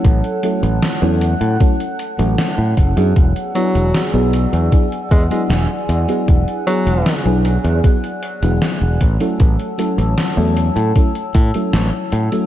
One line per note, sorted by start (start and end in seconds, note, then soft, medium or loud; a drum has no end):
0.00 0.39 F#3 medium
0.00 0.39 A3 medium
0.00 0.39 C#4 medium
0.00 0.39 E4 medium
0.00 0.39 A4 loud
0.00 3.12 C#5 medium
0.00 12.46 F#5 medium
0.00 3.12 A5 medium
0.00 3.13 F#6 medium
0.04 0.20 A1 loud
0.04 kick loud
0.04 closed hi-hat medium
0.24 closed hi-hat soft
0.43 0.97 F#3 medium
0.43 0.97 A3 medium
0.43 0.97 C#4 medium
0.43 0.98 E4 medium
0.43 0.98 A4 medium
0.43 closed hi-hat medium
0.63 0.79 A1 medium
0.63 closed hi-hat medium
0.82 snare loud
0.82 closed hi-hat medium
1.02 1.33 E2 medium
1.02 1.56 F#3 loud
1.02 1.56 A3 medium
1.02 1.56 C#4 medium
1.02 1.56 E4 medium
1.02 1.56 A4 loud
1.21 closed hi-hat medium
1.41 1.56 A2 medium
1.41 closed hi-hat medium
1.60 1.73 F#3 medium
1.60 1.73 A3 medium
1.60 1.73 C#4 medium
1.60 1.73 E4 medium
1.60 1.74 A4 medium
1.60 kick loud
1.60 closed hi-hat medium
1.80 closed hi-hat soft
1.99 closed hi-hat medium
2.18 2.35 A1 loud
2.18 2.92 F#3 medium
2.18 2.92 A3 medium
2.18 2.92 C#4 medium
2.18 2.92 E4 medium
2.18 2.93 A4 medium
2.18 closed hi-hat medium
2.38 snare loud
2.38 closed hi-hat medium
2.58 2.74 A2 medium
2.77 2.93 F#1 medium
2.77 kick medium
2.77 closed hi-hat medium
2.96 3.12 F#2 loud
2.96 3.50 F#3 medium
2.96 3.51 B3 medium
2.96 3.51 D4 medium
2.96 3.51 E4 medium
2.96 3.51 G#4 medium
2.96 closed hi-hat medium
3.16 3.32 E1 loud
3.16 8.97 D5 medium
3.16 8.97 G#5 medium
3.16 6.25 E6 medium
3.16 kick loud
3.16 closed hi-hat medium
3.36 closed hi-hat soft
3.55 4.09 F#3 medium
3.55 4.02 F#3 medium
3.55 4.09 B3 medium
3.55 4.09 D4 medium
3.55 4.09 E4 medium
3.55 4.09 G#4 medium
3.55 closed hi-hat medium
3.75 3.91 E1 medium
3.75 closed hi-hat soft
3.94 snare loud
3.94 closed hi-hat medium
4.13 4.45 B1 medium
4.13 4.67 F#3 medium
4.13 4.67 B3 medium
4.13 4.67 D4 medium
4.13 4.68 E4 medium
4.13 4.68 G#4 loud
4.33 closed hi-hat medium
4.53 4.68 E2 medium
4.53 closed hi-hat soft
4.71 4.85 F#3 medium
4.71 4.85 B3 medium
4.71 4.85 D4 medium
4.71 4.85 E4 medium
4.71 4.85 G#4 medium
4.71 kick loud
4.71 closed hi-hat medium
4.92 closed hi-hat soft
5.11 5.27 E2 loud
5.11 5.24 G#3 medium
5.11 kick loud
5.11 closed hi-hat medium
5.30 6.04 F#3 medium
5.30 5.43 G#3 medium
5.30 6.04 B3 medium
5.30 6.04 D4 medium
5.30 6.04 E4 medium
5.30 6.04 G#4 medium
5.30 muted fingered electric bass stroke soft
5.30 closed hi-hat soft
5.50 5.66 E1 loud
5.50 snare loud
5.50 closed hi-hat medium
5.89 6.05 E2 medium
5.89 closed hi-hat medium
6.08 6.62 F#3 medium
6.08 6.62 B3 medium
6.08 6.62 D4 medium
6.08 6.62 E4 medium
6.08 6.63 G#4 medium
6.08 closed hi-hat soft
6.28 6.44 E1 loud
6.28 8.98 F#6 medium
6.28 kick loud
6.28 closed hi-hat medium
6.48 closed hi-hat soft
6.67 7.21 F#3 medium
6.67 7.26 F#3 loud
6.67 7.21 B3 medium
6.67 7.21 D4 medium
6.67 7.21 E4 medium
6.67 7.21 G#4 medium
6.67 closed hi-hat medium
6.87 7.02 E1 medium
6.87 closed hi-hat soft
7.06 snare loud
7.06 closed hi-hat medium
7.25 7.57 B1 medium
7.25 7.79 F#3 medium
7.25 7.79 B3 medium
7.25 7.79 D4 medium
7.25 7.79 E4 medium
7.25 7.80 G#4 loud
7.45 closed hi-hat medium
7.64 7.80 E2 medium
7.64 closed hi-hat soft
7.83 7.96 F#3 medium
7.83 7.97 B3 medium
7.83 7.97 D4 medium
7.83 7.97 E4 medium
7.83 7.97 G#4 medium
7.83 kick loud
7.83 closed hi-hat medium
8.04 closed hi-hat soft
8.23 closed hi-hat medium
8.42 8.58 E1 loud
8.42 8.98 F#3 medium
8.42 8.98 B3 medium
8.42 8.98 D4 medium
8.42 8.99 E4 medium
8.42 8.99 G#4 medium
8.42 closed hi-hat soft
8.62 snare loud
8.62 closed hi-hat medium
8.81 8.97 E1 loud
9.01 9.17 A1 medium
9.01 12.46 C#5 medium
9.01 12.10 A5 medium
9.01 12.46 E6 medium
9.01 kick medium
9.01 closed hi-hat medium
9.19 9.74 F#3 medium
9.19 9.74 A3 medium
9.19 9.74 C#4 medium
9.19 9.74 E4 medium
9.19 9.74 A4 loud
9.19 closed hi-hat soft
9.40 9.56 A1 loud
9.40 kick loud
9.40 closed hi-hat medium
9.59 closed hi-hat soft
9.78 10.32 F#3 medium
9.78 10.32 A3 medium
9.78 10.33 C#4 medium
9.78 10.33 E4 medium
9.78 10.33 A4 medium
9.78 closed hi-hat medium
9.98 10.14 A1 medium
9.98 closed hi-hat medium
10.18 snare loud
10.18 closed hi-hat medium
10.37 10.68 E2 medium
10.37 10.91 F#3 medium
10.37 10.91 A3 medium
10.37 10.91 C#4 medium
10.37 10.91 E4 medium
10.37 10.91 A4 loud
10.57 closed hi-hat medium
10.76 10.92 A2 medium
10.76 closed hi-hat medium
10.95 11.08 F#3 medium
10.95 11.08 A3 medium
10.95 11.08 C#4 medium
10.95 11.09 E4 medium
10.95 11.09 A4 medium
10.95 kick loud
10.95 closed hi-hat medium
11.15 closed hi-hat soft
11.34 11.50 A2 loud
11.34 kick loud
11.34 closed hi-hat medium
11.54 12.27 F#3 medium
11.54 12.28 A3 medium
11.54 12.28 C#4 medium
11.54 12.28 E4 medium
11.54 12.28 A4 medium
11.54 muted fingered electric bass stroke soft
11.54 closed hi-hat medium
11.73 11.89 A1 loud
11.73 snare loud
11.73 closed hi-hat medium
12.12 12.28 A2 medium
12.12 12.46 B5 medium
12.12 closed hi-hat medium
12.32 12.46 F#3 medium
12.32 12.46 A3 medium
12.32 12.46 C#4 medium
12.32 12.46 E4 medium
12.32 12.46 A4 medium
12.32 closed hi-hat soft